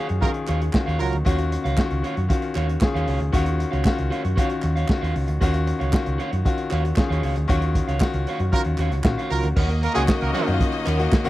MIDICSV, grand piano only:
0, 0, Header, 1, 2, 480
1, 0, Start_track
1, 0, Key_signature, -6, "minor"
1, 0, Tempo, 519031
1, 1167, Time_signature, 4, 2, 24, 8
1, 10445, End_track
2, 0, Start_track
2, 0, Title_t, "Grand piano"
2, 0, Program_c, 0, 0
2, 0, Control_c, 0, 64, 127
2, 0, Note_on_c, 0, 51, 80
2, 0, Note_on_c, 0, 61, 79
2, 0, Note_on_c, 0, 65, 74
2, 0, Note_on_c, 0, 66, 75
2, 0, Note_on_c, 0, 68, 99
2, 124, Note_off_c, 0, 68, 0
2, 191, Note_off_c, 0, 51, 0
2, 191, Note_on_c, 0, 51, 83
2, 195, Note_off_c, 0, 61, 0
2, 195, Note_on_c, 0, 61, 77
2, 198, Note_off_c, 0, 65, 0
2, 198, Note_on_c, 0, 65, 74
2, 203, Note_on_c, 0, 68, 86
2, 569, Note_off_c, 0, 51, 0
2, 571, Note_off_c, 0, 61, 0
2, 573, Note_off_c, 0, 65, 0
2, 575, Note_off_c, 0, 68, 0
2, 672, Note_on_c, 0, 51, 79
2, 677, Note_on_c, 0, 61, 69
2, 681, Note_on_c, 0, 65, 65
2, 688, Note_off_c, 0, 66, 0
2, 688, Note_on_c, 0, 66, 74
2, 1050, Note_off_c, 0, 51, 0
2, 1052, Note_off_c, 0, 61, 0
2, 1055, Note_off_c, 0, 65, 0
2, 1058, Note_off_c, 0, 66, 0
2, 1153, Note_on_c, 0, 51, 92
2, 1160, Note_on_c, 0, 61, 87
2, 1163, Note_on_c, 0, 65, 85
2, 1168, Note_on_c, 0, 66, 105
2, 1530, Note_off_c, 0, 51, 0
2, 1534, Note_off_c, 0, 61, 0
2, 1535, Note_off_c, 0, 65, 0
2, 1538, Note_off_c, 0, 66, 0
2, 1635, Note_on_c, 0, 51, 89
2, 1641, Note_on_c, 0, 61, 74
2, 1642, Note_on_c, 0, 65, 79
2, 1648, Note_on_c, 0, 66, 94
2, 2011, Note_off_c, 0, 51, 0
2, 2014, Note_off_c, 0, 61, 0
2, 2014, Note_off_c, 0, 65, 0
2, 2018, Note_off_c, 0, 66, 0
2, 2114, Note_on_c, 0, 51, 81
2, 2120, Note_on_c, 0, 61, 70
2, 2121, Note_on_c, 0, 65, 74
2, 2130, Note_on_c, 0, 66, 84
2, 2490, Note_off_c, 0, 51, 0
2, 2494, Note_off_c, 0, 61, 0
2, 2494, Note_off_c, 0, 65, 0
2, 2499, Note_off_c, 0, 66, 0
2, 2596, Note_on_c, 0, 51, 80
2, 2600, Note_on_c, 0, 61, 69
2, 2608, Note_on_c, 0, 65, 76
2, 2609, Note_on_c, 0, 68, 91
2, 2971, Note_off_c, 0, 51, 0
2, 2974, Note_off_c, 0, 61, 0
2, 2977, Note_off_c, 0, 65, 0
2, 2978, Note_off_c, 0, 68, 0
2, 3076, Note_on_c, 0, 51, 99
2, 3081, Note_on_c, 0, 61, 86
2, 3087, Note_on_c, 0, 65, 87
2, 3089, Note_on_c, 0, 66, 109
2, 3451, Note_off_c, 0, 51, 0
2, 3454, Note_off_c, 0, 61, 0
2, 3457, Note_off_c, 0, 65, 0
2, 3458, Note_off_c, 0, 66, 0
2, 3563, Note_on_c, 0, 51, 84
2, 3568, Note_on_c, 0, 61, 84
2, 3572, Note_on_c, 0, 65, 87
2, 3574, Note_on_c, 0, 66, 98
2, 3935, Note_off_c, 0, 51, 0
2, 3938, Note_off_c, 0, 61, 0
2, 3939, Note_off_c, 0, 65, 0
2, 3941, Note_off_c, 0, 66, 0
2, 4042, Note_on_c, 0, 51, 87
2, 4048, Note_on_c, 0, 61, 71
2, 4051, Note_on_c, 0, 65, 80
2, 4056, Note_on_c, 0, 66, 93
2, 4415, Note_off_c, 0, 51, 0
2, 4418, Note_off_c, 0, 61, 0
2, 4419, Note_off_c, 0, 65, 0
2, 4421, Note_off_c, 0, 66, 0
2, 4522, Note_on_c, 0, 51, 83
2, 4527, Note_on_c, 0, 61, 69
2, 4530, Note_on_c, 0, 65, 72
2, 4538, Note_on_c, 0, 66, 90
2, 4894, Note_off_c, 0, 51, 0
2, 4897, Note_off_c, 0, 61, 0
2, 4899, Note_off_c, 0, 65, 0
2, 4902, Note_off_c, 0, 66, 0
2, 5004, Note_on_c, 0, 51, 97
2, 5010, Note_on_c, 0, 61, 89
2, 5013, Note_on_c, 0, 65, 91
2, 5018, Note_on_c, 0, 66, 118
2, 5375, Note_off_c, 0, 51, 0
2, 5378, Note_off_c, 0, 61, 0
2, 5380, Note_off_c, 0, 65, 0
2, 5382, Note_off_c, 0, 66, 0
2, 5478, Note_on_c, 0, 51, 88
2, 5481, Note_on_c, 0, 61, 76
2, 5485, Note_on_c, 0, 65, 78
2, 5494, Note_on_c, 0, 66, 94
2, 5853, Note_off_c, 0, 51, 0
2, 5854, Note_off_c, 0, 61, 0
2, 5856, Note_off_c, 0, 65, 0
2, 5861, Note_off_c, 0, 66, 0
2, 5964, Note_on_c, 0, 51, 78
2, 5967, Note_on_c, 0, 61, 74
2, 5970, Note_on_c, 0, 65, 82
2, 5975, Note_on_c, 0, 66, 97
2, 6336, Note_off_c, 0, 51, 0
2, 6337, Note_off_c, 0, 61, 0
2, 6339, Note_off_c, 0, 65, 0
2, 6341, Note_off_c, 0, 66, 0
2, 6439, Note_on_c, 0, 51, 80
2, 6445, Note_on_c, 0, 61, 75
2, 6445, Note_on_c, 0, 65, 73
2, 6449, Note_on_c, 0, 68, 76
2, 6813, Note_off_c, 0, 51, 0
2, 6816, Note_off_c, 0, 61, 0
2, 6817, Note_off_c, 0, 65, 0
2, 6819, Note_off_c, 0, 68, 0
2, 6915, Note_on_c, 0, 51, 98
2, 6918, Note_on_c, 0, 61, 95
2, 6925, Note_on_c, 0, 65, 91
2, 6927, Note_on_c, 0, 66, 103
2, 7291, Note_off_c, 0, 51, 0
2, 7293, Note_off_c, 0, 61, 0
2, 7296, Note_off_c, 0, 65, 0
2, 7298, Note_off_c, 0, 66, 0
2, 7398, Note_on_c, 0, 51, 85
2, 7402, Note_on_c, 0, 61, 80
2, 7410, Note_on_c, 0, 65, 77
2, 7415, Note_on_c, 0, 66, 105
2, 7773, Note_off_c, 0, 51, 0
2, 7775, Note_off_c, 0, 61, 0
2, 7779, Note_off_c, 0, 65, 0
2, 7782, Note_off_c, 0, 66, 0
2, 7877, Note_on_c, 0, 51, 81
2, 7880, Note_on_c, 0, 61, 70
2, 7888, Note_on_c, 0, 65, 69
2, 7891, Note_on_c, 0, 66, 84
2, 8253, Note_off_c, 0, 51, 0
2, 8254, Note_off_c, 0, 61, 0
2, 8258, Note_off_c, 0, 65, 0
2, 8260, Note_off_c, 0, 66, 0
2, 8356, Note_on_c, 0, 51, 75
2, 8359, Note_on_c, 0, 61, 69
2, 8366, Note_on_c, 0, 65, 76
2, 8369, Note_on_c, 0, 66, 88
2, 8732, Note_off_c, 0, 51, 0
2, 8734, Note_off_c, 0, 61, 0
2, 8737, Note_off_c, 0, 65, 0
2, 8739, Note_off_c, 0, 66, 0
2, 8860, Control_c, 0, 64, 0
2, 9030, Control_c, 0, 64, 127
2, 9192, Note_on_c, 0, 51, 93
2, 9199, Note_on_c, 0, 58, 84
2, 9202, Note_on_c, 0, 61, 84
2, 9206, Note_on_c, 0, 66, 110
2, 9478, Note_off_c, 0, 51, 0
2, 9481, Note_off_c, 0, 58, 0
2, 9483, Note_off_c, 0, 61, 0
2, 9485, Note_off_c, 0, 66, 0
2, 9553, Note_on_c, 0, 51, 90
2, 9556, Note_on_c, 0, 58, 79
2, 9564, Note_on_c, 0, 61, 80
2, 9568, Note_on_c, 0, 66, 98
2, 9653, Note_off_c, 0, 51, 0
2, 9655, Note_off_c, 0, 58, 0
2, 9659, Note_off_c, 0, 61, 0
2, 9661, Note_off_c, 0, 66, 0
2, 9669, Note_on_c, 0, 51, 88
2, 9675, Note_on_c, 0, 58, 82
2, 9679, Note_on_c, 0, 61, 84
2, 9685, Note_on_c, 0, 63, 74
2, 9742, Note_on_c, 0, 65, 99
2, 9744, Note_off_c, 0, 63, 0
2, 10049, Note_off_c, 0, 51, 0
2, 10052, Note_off_c, 0, 58, 0
2, 10054, Note_off_c, 0, 61, 0
2, 10086, Note_off_c, 0, 65, 0
2, 10148, Note_on_c, 0, 51, 85
2, 10155, Note_on_c, 0, 58, 88
2, 10161, Note_on_c, 0, 61, 77
2, 10165, Note_on_c, 0, 66, 98
2, 10344, Note_off_c, 0, 51, 0
2, 10347, Note_off_c, 0, 58, 0
2, 10350, Note_off_c, 0, 61, 0
2, 10352, Note_off_c, 0, 66, 0
2, 10395, Note_on_c, 0, 51, 99
2, 10397, Note_on_c, 0, 58, 101
2, 10403, Note_on_c, 0, 61, 98
2, 10405, Note_on_c, 0, 66, 113
2, 10445, Note_off_c, 0, 51, 0
2, 10445, Note_off_c, 0, 58, 0
2, 10445, Note_off_c, 0, 61, 0
2, 10445, Note_off_c, 0, 66, 0
2, 10445, End_track
0, 0, End_of_file